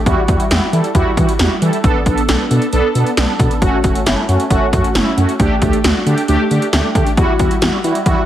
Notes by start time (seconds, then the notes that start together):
0.06 E2 G3 E4 F#4, kick, closed hi-hat
0.28 E2 G3 E4 F#4, kick, closed hi-hat
0.40 closed hi-hat
0.51 E2 G3 E4 F#4, snare, closed hi-hat
0.73 E3 G3 E4 A4, closed hi-hat
0.84 closed hi-hat
0.95 E2 G3 E4 F#4, kick, closed hi-hat
1.17 E3 G3 E4 F#4, kick, closed hi-hat
1.29 closed hi-hat
1.39 E2 G3 E4 F#4, snare, closed hi-hat
1.62 E3 G3 E4 A4, closed hi-hat
1.73 closed hi-hat
1.84 B1 B3 D4 A4, kick, closed hi-hat
2.06 B1 B3 D4 A4, kick, closed hi-hat
2.18 closed hi-hat
2.29 B1 B3 D4 A4, snare, closed hi-hat
2.51 B2 B3 D4 A4, closed hi-hat
2.62 closed hi-hat
2.73 B1 B3 D4 A4, closed hi-hat
2.95 B2 B3 D4 A4, closed hi-hat
3.07 closed hi-hat
3.17 B1 B3 D4 A4, snare, closed hi-hat
3.40 B2 B3 D4 A4, kick, closed hi-hat
3.51 closed hi-hat
3.62 F#1 A3 C#4 F#4, kick, closed hi-hat
3.84 F#1 A3 C#4 F#4, kick, closed hi-hat
3.95 closed hi-hat
4.06 F#1 A3 C#4 E4, snare, closed hi-hat
4.29 F#2 A3 C#4 F#4, closed hi-hat
4.40 closed hi-hat
4.50 F#1 A3 C#4 F#4, kick, closed hi-hat
4.73 F#2 A3 C#4 F#4, kick, closed hi-hat
4.84 closed hi-hat
4.95 F#1 A3 C#4 E4, snare, closed hi-hat
5.17 F#2 A3 C#4 F#4, closed hi-hat
5.29 closed hi-hat
5.40 D2 A3 D4 G4, kick, closed hi-hat
5.62 D2 A3 D4 G4, kick, closed hi-hat
5.73 closed hi-hat
5.84 D2 A3 D4 F#4, snare, closed hi-hat
6.06 D3 A3 D4 G4, closed hi-hat
6.18 closed hi-hat
6.28 D2 A3 D4 G4, closed hi-hat
6.51 D3 A3 D4 G4, closed hi-hat
6.62 closed hi-hat
6.73 D2 A3 D4 G4, snare, closed hi-hat
6.95 D3 A3 D4 G4, kick, closed hi-hat
7.07 closed hi-hat
7.17 E2 G3 E4 F#4, kick, closed hi-hat
7.39 E2 G3 E4 F#4, kick, closed hi-hat
7.51 closed hi-hat
7.62 E2 G3 E4 F#4, snare, closed hi-hat
7.84 E3 G3 E4 F#4, closed hi-hat
7.95 closed hi-hat
8.06 E2 G3 E4 F#4, kick, closed hi-hat